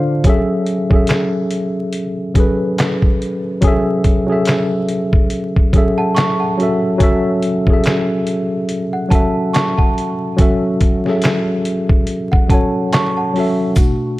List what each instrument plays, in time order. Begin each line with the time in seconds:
Already playing: tine electric piano D3 D4 F4 C5 D5 F5, celesta D5 F5
0.24 tine electric piano F#3 C#4 G#4, kick, closed hi-hat
0.28 tine electric piano A4 E5
0.66 closed hi-hat
0.90 tine electric piano F#3 C#4 G#4 A4, kick
0.96 tine electric piano E5
1.07 snare, clap, closed hi-hat
1.51 closed hi-hat
1.93 closed hi-hat
2.34 tine electric piano F#3 C#4 G#4 A4, kick, closed hi-hat
2.40 tine electric piano B4
2.78 snare, clap, closed hi-hat
3.02 kick
3.22 closed hi-hat
3.61 tine electric piano F#3 C#4 G#4, kick, closed hi-hat
3.66 tine electric piano A4 E5
4.04 kick, closed hi-hat
4.26 tine electric piano F#3 C#4 G#4
4.31 tine electric piano A4 E5
4.45 snare, clap, closed hi-hat
4.89 closed hi-hat
5.13 kick
5.30 closed hi-hat
5.56 kick
5.73 tine electric piano F#3 C#4 G#4, kick, closed hi-hat
5.77 tine electric piano A4 E5
5.98 celesta F#5 A5
6.15 celesta A5 C#6, snare, clap, closed hi-hat
6.40 celesta F#5 A5
6.58 tine electric piano F#3 C#4 F#4, closed hi-hat
6.62 tine electric piano A4 E5
6.98 tine electric piano F#3 C#4 F#4, kick, closed hi-hat
7.02 tine electric piano A4 E5
7.43 closed hi-hat
7.67 tine electric piano F#3 C#4 G#4, kick
7.72 tine electric piano A4 E5
7.84 snare, clap, closed hi-hat
8.27 closed hi-hat
8.69 closed hi-hat
8.93 celesta F#5
9.09 tine electric piano F#3 C#4 F#4, celesta F#5 A5, kick, closed hi-hat
9.13 tine electric piano A4 E5
9.53 celesta A5 C#6, snare, clap, closed hi-hat
9.78 celesta F#5 A5, kick
9.98 closed hi-hat
10.36 tine electric piano F#3 C#4 F#4, kick, closed hi-hat
10.41 tine electric piano A4 E5
10.81 kick, closed hi-hat
11.05 tine electric piano F#3 C#4 G#4, snare
11.09 tine electric piano A4 E5
11.22 snare, clap, closed hi-hat
11.65 closed hi-hat
11.89 kick
12.07 closed hi-hat
12.32 celesta F#5, kick
12.48 tine electric piano F#3 C#4 F#4, celesta F#5 A5, kick, closed hi-hat
12.52 tine electric piano A4 C#5
12.93 celesta A5 C#6, snare, clap, closed hi-hat
13.17 celesta F#5 A5
13.34 tine electric piano F#3 C#4 F#4, open hi-hat
13.38 tine electric piano A4 E5
13.76 tine electric piano B2 A3 F#4, kick, closed hi-hat, shaker
13.80 tine electric piano D4